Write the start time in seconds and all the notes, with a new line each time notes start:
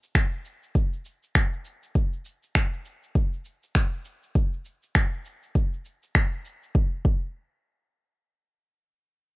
0.03 cabasa
0.15 finger snap, kick, cabasa
0.33 cabasa
0.45 cabasa
0.63 cabasa
0.75 kick, cabasa
0.93 cabasa
1.05 cabasa
1.23 cabasa
1.35 finger snap, kick, cabasa
1.53 cabasa
1.65 cabasa
1.83 cabasa
1.95 kick, cabasa
2.13 cabasa
2.25 cabasa
2.43 cabasa
2.55 finger snap, kick, cabasa
2.73 cabasa
2.85 cabasa
3.03 cabasa
3.15 kick, cabasa
3.33 cabasa
3.45 cabasa
3.63 cabasa
3.75 finger snap, kick, cabasa
3.93 cabasa
4.05 cabasa
4.23 cabasa
4.35 kick, cabasa
4.53 cabasa
4.65 cabasa
4.83 cabasa
4.95 finger snap, kick, cabasa
5.13 cabasa
5.25 cabasa
5.43 cabasa
5.55 kick, cabasa
5.73 cabasa
5.85 cabasa
6.03 cabasa
6.15 finger snap, kick, cabasa
6.33 cabasa
6.45 cabasa
6.63 cabasa
6.75 kick
7.05 kick